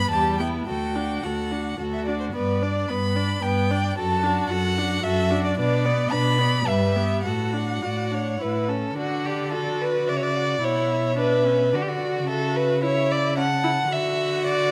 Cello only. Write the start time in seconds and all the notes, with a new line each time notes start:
0.12 E2
0.68 D2
1.23 D2
1.79 D2
2.35 G2
2.90 G2
3.43 G2
3.97 F#2
4.50 F#2
5.04 F#2
5.58 B2
6.12 B2
6.68 G2
7.25 A2
7.84 A2
8.41 A2
8.98 D3
10.09 C#3
10.64 B2
11.73 D3
12.28 C#3
13.90 D3